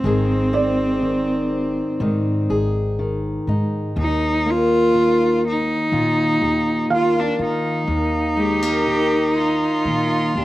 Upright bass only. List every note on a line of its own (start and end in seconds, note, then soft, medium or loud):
0.04 1.80 G#1 medium
2.00 2.44 G#2 medium
2.50 3.37 G#1 medium
3.47 3.91 G#2 medium
3.96 5.72 D#2 medium
5.92 6.36 D#3 medium
6.41 7.29 D#2 medium
7.39 7.83 D#3 medium
7.88 9.65 D#2 medium
9.85 10.30 D#3 medium
10.35 10.45 D#2 medium